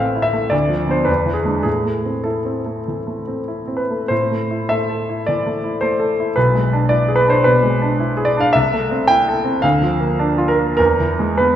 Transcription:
0.00 0.49 A1 soft
0.00 0.55 E3 soft
0.00 0.33 A3 soft
0.00 0.27 C4 soft
0.00 0.22 E5 medium
0.00 0.24 F5 medium
0.00 0.55 G5 medium
0.15 0.45 E4 soft
0.22 0.51 E5 medium
0.33 0.52 A3 soft
0.50 1.06 D2 medium
0.50 0.93 D5 medium
0.69 1.00 F3 soft
0.87 1.05 B3 soft
0.87 1.05 D4 soft
0.87 1.07 C5 medium
1.05 1.63 E2 soft
1.05 1.35 B4 medium
1.26 1.57 E3 soft
1.33 1.61 G#4 medium
1.45 1.63 G#3 soft
1.45 1.63 D4 soft
1.63 2.83 A2 soft
1.63 2.25 G#4 medium
1.85 2.18 A3 soft
2.05 2.38 C4 soft
2.24 2.58 E4 soft
2.24 3.79 A4 soft
2.45 2.79 C4 soft
2.66 2.99 A3 soft
2.88 3.21 E3 soft
3.07 3.40 A3 soft
3.27 3.61 C4 soft
3.48 3.82 E4 soft
3.68 4.02 C4 soft
3.77 4.09 B4 soft
3.90 4.11 A3 soft
4.08 5.24 A2 soft
4.08 4.69 C5 medium
4.31 4.63 A3 soft
4.51 4.82 E4 soft
4.69 5.02 A3 soft
4.69 5.27 E5 medium
4.90 5.20 A4 soft
5.09 5.39 E4 soft
5.26 5.57 E3 soft
5.26 5.81 D5 medium
5.46 5.75 A3 soft
5.64 5.93 E4 soft
5.81 6.11 A3 soft
5.81 6.35 C5 medium
6.00 6.29 A4 soft
6.20 6.37 E4 soft
6.36 7.42 B1 soft
6.36 6.91 B4 medium
6.55 6.84 G#3 soft
6.73 7.02 D4 soft
6.89 7.19 E4 soft
6.89 7.17 D5 medium
7.08 7.37 G#4 soft
7.16 7.30 B4 medium
7.27 7.56 D4 soft
7.27 7.44 C5 medium
7.44 7.74 B2 soft
7.44 7.99 B4 medium
7.63 7.92 G#3 soft
7.82 8.10 D4 soft
8.00 8.28 E4 soft
8.17 8.46 G#4 medium
8.25 8.39 D5 medium
8.37 8.54 D4 soft
8.37 8.54 F5 medium
8.53 9.61 C2 medium
8.53 9.08 E5 medium
8.74 9.02 A3 soft
8.91 9.20 C4 soft
9.08 9.38 E4 medium
9.08 9.63 G5 medium
9.28 9.57 A4 soft
9.45 9.63 C4 soft
9.62 10.75 D2 medium
9.62 10.48 F5 medium
9.82 10.12 F3 soft
10.00 10.31 A#3 soft
10.19 10.50 D4 medium
10.38 10.70 F4 medium
10.48 10.75 A#4 medium
10.59 10.79 A#3 soft
10.77 11.56 E2 medium
10.77 11.39 A#4 medium
11.00 11.32 E3 soft
11.19 11.52 G#3 soft
11.38 11.56 B3 soft
11.38 11.56 B4 medium

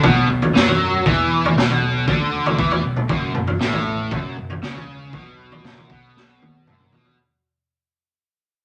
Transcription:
0.03 0.27 B1 medium
0.03 0.28 B2 loud
0.03 kick medium
0.03 floor tom medium
0.03 mid tom medium
0.29 0.53 B1 medium
0.29 0.50 B2 medium
0.42 floor tom medium
0.55 1.02 F#2 medium
0.55 1.05 F#3 medium
0.55 snare medium
0.68 floor tom medium
1.06 1.53 E2 medium
1.06 1.56 E3 loud
1.06 kick medium
1.06 floor tom medium
1.45 floor tom medium
1.56 2.03 B1 medium
1.56 2.07 B2 loud
1.56 snare medium
1.56 mid tom medium
1.70 floor tom medium
2.08 2.55 D2 medium
2.08 2.57 D3 loud
2.08 kick loud
2.08 floor tom medium
2.46 floor tom medium
2.59 2.82 E2 loud
2.59 2.83 E3 medium
2.59 kick loud
2.71 floor tom medium
2.83 3.07 B1 medium
2.83 3.04 B2 medium
2.96 mid tom medium
3.09 3.33 F#1 medium
3.09 3.34 F#2 medium
3.09 kick loud
3.09 floor tom medium
3.34 3.58 F#1 medium
3.34 3.55 F#2 medium
3.34 mid tom medium
3.47 floor tom medium
3.61 4.08 A1 medium
3.61 4.10 A2 loud
3.61 snare medium
3.73 floor tom medium
4.11 4.35 F#1 medium
4.11 4.36 F#2 medium
4.11 kick medium
4.11 floor tom medium
4.11 mid tom medium
4.36 4.60 F#1 medium
4.36 4.58 F#2 medium
4.50 floor tom medium
4.62 5.09 C#2 medium
4.62 5.13 C#3 medium
4.62 snare medium
4.75 floor tom medium
5.13 5.60 B1 medium
5.13 5.64 B2 loud
5.13 kick medium
5.13 floor tom medium
5.52 floor tom medium
5.63 5.87 F#1 medium
5.63 5.89 F#2 medium
5.63 snare medium
5.63 mid tom medium
5.78 floor tom medium
5.90 6.62 B1 medium
5.90 6.66 B2 medium
5.90 kick medium
6.17 snare medium
6.42 high tom medium
6.64 6.88 F#1 medium
6.64 6.91 F#2 medium
6.64 mid tom medium
6.80 mid tom medium
6.90 7.14 B1 medium
6.90 7.16 B2 medium
6.90 floor tom medium
7.05 floor tom medium

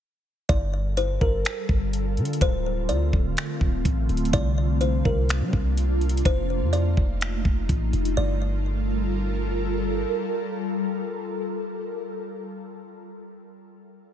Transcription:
0.49 1.18 G1 loud
0.49 2.39 G3 medium
0.49 8.13 F4 medium
0.49 2.39 A4 medium
0.49 2.39 A#4 medium
0.49 0.94 D5 loud
0.49 kick loud
0.49 closed hi-hat medium
0.97 1.20 C5 medium
0.97 closed hi-hat medium
1.21 1.44 G1 loud
1.21 1.44 A#4 medium
1.21 kick medium
1.45 finger snap loud
1.45 closed hi-hat medium
1.69 2.19 G1 loud
1.69 kick medium
1.93 closed hi-hat medium
2.17 2.40 D3 loud
2.17 closed hi-hat soft
2.25 closed hi-hat medium
2.33 closed hi-hat medium
2.41 2.91 D1 loud
2.41 4.31 D3 medium
2.41 4.31 A3 medium
2.41 4.31 C4 medium
2.41 2.87 C5 medium
2.41 kick loud
2.41 closed hi-hat medium
2.89 3.12 D2 loud
2.89 3.81 D5 medium
2.89 closed hi-hat medium
3.13 3.36 D1 loud
3.13 kick medium
3.37 finger snap loud
3.37 closed hi-hat medium
3.61 3.84 D1 loud
3.61 kick loud
3.85 4.08 A1 loud
3.85 kick loud
3.85 closed hi-hat medium
4.09 4.32 D1 loud
4.09 closed hi-hat soft
4.17 closed hi-hat medium
4.25 closed hi-hat medium
4.33 5.02 C2 loud
4.33 6.23 C3 medium
4.33 6.23 A#3 medium
4.33 6.23 D4 medium
4.33 4.78 D5 loud
4.33 kick loud
4.33 closed hi-hat medium
4.81 5.04 C5 medium
4.81 closed hi-hat medium
5.05 5.43 C2 loud
5.05 5.28 A#4 medium
5.05 kick medium
5.29 finger snap loud
5.29 closed hi-hat medium
5.41 5.53 G3 medium
5.53 6.22 C2 loud
5.53 kick medium
5.77 closed hi-hat medium
6.01 closed hi-hat soft
6.09 closed hi-hat medium
6.17 closed hi-hat medium
6.25 6.63 F1 loud
6.25 8.16 A3 medium
6.25 8.15 D#4 medium
6.25 6.71 C5 loud
6.25 kick loud
6.25 closed hi-hat medium
6.61 6.96 F2 medium
6.73 7.65 D5 medium
6.73 closed hi-hat medium
6.97 7.43 F1 loud
6.97 kick medium
7.21 finger snap loud
7.21 closed hi-hat medium
7.45 7.68 F1 loud
7.45 kick medium
7.69 7.92 A1 loud
7.69 kick medium
7.69 closed hi-hat medium
7.93 8.16 F1 loud
7.93 closed hi-hat medium
8.05 closed hi-hat medium
8.17 10.05 G1 loud
8.17 11.89 G3 medium
8.17 11.89 F4 medium
8.17 11.89 A4 medium
8.17 11.89 A#4 medium
8.17 9.57 D5 medium

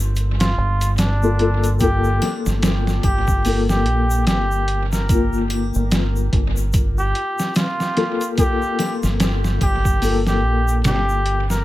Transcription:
0.00 0.54 G1 medium
0.00 1.23 A#3 medium
0.00 1.24 F4 medium
0.00 1.24 A4 medium
0.16 closed hi-hat medium
0.16 shaker medium
0.40 0.93 F4 medium
0.40 snare medium
0.40 closed hi-hat medium
0.40 shaker soft
0.58 2.19 G1 medium
0.81 closed hi-hat medium
0.81 shaker medium
0.98 1.74 D4 medium
0.98 snare medium
0.98 closed hi-hat medium
0.98 shaker medium
1.23 1.36 A#3 medium
1.23 1.36 F4 medium
1.23 1.36 A4 medium
1.23 shaker soft
1.39 1.77 A#3 medium
1.39 1.77 F4 medium
1.39 1.77 A4 loud
1.39 closed hi-hat medium
1.64 closed hi-hat soft
1.64 shaker medium
1.80 3.41 A#3 medium
1.80 3.42 F4 medium
1.80 2.39 G4 medium
1.80 3.42 A4 medium
1.80 kick medium
1.80 closed hi-hat medium
1.80 shaker medium
2.04 shaker soft
2.22 snare soft
2.22 closed hi-hat medium
2.22 triangle medium
2.46 3.01 G1 medium
2.46 snare soft
2.46 shaker medium
2.63 snare loud
2.63 closed hi-hat medium
2.63 shaker medium
2.87 snare soft
2.87 shaker soft
3.03 3.86 G1 medium
3.03 3.62 G4 medium
3.03 kick medium
3.03 closed hi-hat medium
3.03 triangle soft
3.28 kick medium
3.28 shaker medium
3.45 5.05 A#3 medium
3.45 5.06 F4 medium
3.45 5.07 A4 medium
3.45 open hi-hat medium
3.45 shaker medium
3.69 4.22 G4 medium
3.69 snare medium
3.69 shaker soft
3.86 4.28 A#1 medium
3.86 closed hi-hat medium
4.11 shaker medium
4.27 5.70 G1 medium
4.27 4.85 G4 loud
4.27 snare loud
4.27 closed hi-hat medium
4.27 shaker medium
4.52 shaker soft
4.68 closed hi-hat medium
4.92 5.45 A#4 medium
4.92 snare soft
4.92 shaker medium
5.09 5.49 A#3 medium
5.09 5.49 F4 medium
5.09 5.49 A#4 medium
5.09 kick loud
5.09 closed hi-hat medium
5.09 shaker medium
5.33 shaker soft
5.50 closed hi-hat medium
5.50 triangle medium
5.74 6.30 G1 medium
5.74 shaker medium
5.91 snare loud
5.91 closed hi-hat medium
5.91 shaker medium
6.16 shaker soft
6.33 7.12 G1 medium
6.33 kick medium
6.33 closed hi-hat medium
6.57 shaker medium
6.73 kick loud
6.73 closed hi-hat medium
6.73 shaker medium
6.98 7.51 G4 medium
6.98 shaker soft
7.15 closed hi-hat medium
7.39 snare soft
7.39 shaker medium
7.55 8.32 F4 medium
7.55 snare loud
7.55 closed hi-hat medium
7.55 shaker medium
7.80 snare soft
7.80 shaker soft
7.97 8.34 A#3 medium
7.97 8.34 F4 medium
7.97 8.35 A4 medium
7.97 snare soft
7.97 closed hi-hat medium
8.21 closed hi-hat soft
8.21 shaker medium
8.37 9.98 A#3 medium
8.37 9.99 F4 medium
8.37 8.97 G4 loud
8.37 10.00 A4 medium
8.37 kick loud
8.37 closed hi-hat medium
8.37 shaker medium
8.62 shaker soft
8.79 snare soft
8.79 closed hi-hat medium
8.79 triangle medium
9.03 9.58 G1 medium
9.03 snare soft
9.03 shaker medium
9.20 snare loud
9.20 closed hi-hat medium
9.20 shaker medium
9.44 snare soft
9.44 shaker soft
9.61 10.44 G1 medium
9.61 10.20 G4 medium
9.61 kick medium
9.61 closed hi-hat medium
9.61 triangle medium
9.85 kick medium
9.85 shaker medium
10.02 11.62 A#3 medium
10.02 11.63 F4 medium
10.02 11.64 A4 medium
10.02 open hi-hat medium
10.02 shaker medium
10.27 10.80 G4 loud
10.27 snare medium
10.27 shaker soft
10.44 10.85 A#1 medium
10.68 shaker medium
10.84 11.64 G1 medium
10.84 11.44 G4 loud
10.84 snare loud
10.84 closed hi-hat medium
10.84 shaker medium
11.09 shaker soft
11.26 closed hi-hat medium
11.50 11.64 A#4 medium
11.50 snare soft
11.50 shaker medium

